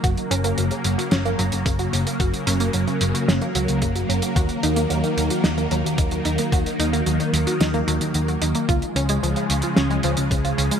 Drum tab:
HH |xxxxxxxxxxxxxxxx|xxxxxxxxxxxxxxxx|xxxxxxxxxxxxxxxx|xxxxxxxxxxxxxxxx|
SD |--------o-------|--------o-------|--------o-------|--------o-------|
BD |o-----------o---|o-----------o---|o-----------o---|o---------------|

HH |xxxxxxxxxxxxxxxx|
SD |--------o-------|
BD |o-----------o---|